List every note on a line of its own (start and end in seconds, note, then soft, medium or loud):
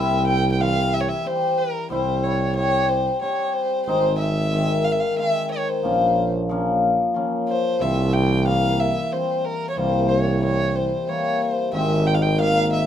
0.00 1.12 C2 medium
0.00 0.57 G3 medium
0.00 2.24 A#3 medium
0.00 0.27 C4 medium
0.00 0.27 E4 medium
0.00 0.27 E5 medium
0.27 0.51 G5 medium
0.52 0.62 G5 medium
0.59 2.62 E3 medium
0.59 1.23 G3 medium
0.59 0.93 C4 medium
0.59 0.95 F5 medium
0.94 1.02 E5 medium
1.00 1.10 C#5 medium
1.09 1.28 E5 medium
1.24 1.89 G3 soft
1.24 1.58 C4 soft
1.24 1.59 G4 medium
1.24 1.60 C5 medium
1.58 1.91 A#4 medium
1.90 3.09 C2 medium
1.90 2.55 G3 medium
1.90 2.24 C4 medium
1.90 2.24 E4 medium
1.90 2.25 C5 medium
2.23 2.55 C#5 medium
2.56 3.93 C3 medium
2.56 3.20 G3 medium
2.56 2.91 G4 medium
2.56 2.90 C#5 medium
2.89 3.21 C5 medium
3.21 3.93 G3 medium
3.21 3.55 C4 soft
3.21 3.56 G4 medium
3.21 3.47 C#5 medium
3.47 3.55 C#5 medium
3.53 3.86 C5 medium
3.86 5.06 G#1 medium
3.86 4.50 G#3 medium
3.86 4.21 C4 medium
3.86 4.21 D#4 medium
3.86 4.18 C5 medium
4.18 4.86 E5 medium
4.51 5.18 D#3 medium
4.51 5.16 G#3 medium
4.51 4.86 C4 medium
4.84 4.94 F5 medium
4.92 5.01 E5 medium
5.00 5.18 F5 medium
5.18 5.90 D#3 medium
5.18 5.90 G#3 soft
5.18 5.52 C4 soft
5.18 5.50 E5 medium
5.52 5.70 C#5 medium
5.69 6.34 C5 medium
5.83 7.02 A#1 medium
5.83 6.48 F3 medium
5.83 6.17 A#3 medium
5.83 6.18 C#4 medium
6.49 7.13 F3 medium
6.49 6.83 A#3 medium
6.49 6.84 C#4 medium
7.14 7.87 F3 medium
7.14 7.49 A#3 medium
7.14 7.49 C#4 medium
7.49 7.83 C5 medium
7.80 8.99 C2 loud
7.80 8.45 E3 medium
7.80 8.45 G3 medium
7.80 8.14 C4 medium
7.80 8.15 E5 medium
8.13 8.47 G5 medium
8.46 9.10 E3 medium
8.46 9.11 G3 medium
8.46 8.80 A#3 medium
8.46 8.81 F5 medium
8.80 9.14 E5 medium
9.12 9.76 E3 soft
9.12 9.77 G3 soft
9.12 9.46 C4 medium
9.12 9.46 C5 medium
9.45 9.69 A#4 medium
9.70 9.78 C#5 medium
9.77 10.95 C2 medium
9.77 10.41 E3 medium
9.77 10.42 G3 medium
9.77 10.11 A#3 medium
9.77 10.10 C5 medium
10.09 10.42 C#5 medium
10.42 11.79 C3 medium
10.42 11.06 E3 medium
10.42 11.07 G3 medium
10.42 10.77 C#5 medium
10.76 11.11 C5 medium
11.07 11.79 E3 soft
11.07 11.79 G3 soft
11.07 11.42 A#3 medium
11.07 11.43 C#5 medium
11.41 11.73 C5 medium
11.73 12.86 G#1 loud
11.73 12.36 D#3 medium
11.73 12.37 G#3 medium
11.73 12.07 C4 medium
11.73 12.08 E5 medium
12.07 12.16 G5 medium
12.14 12.24 F5 medium
12.22 12.40 G5 medium
12.38 12.86 D#3 medium
12.38 12.86 G#3 medium
12.38 12.72 A#3 medium
12.38 12.71 F5 medium
12.73 12.86 E5 medium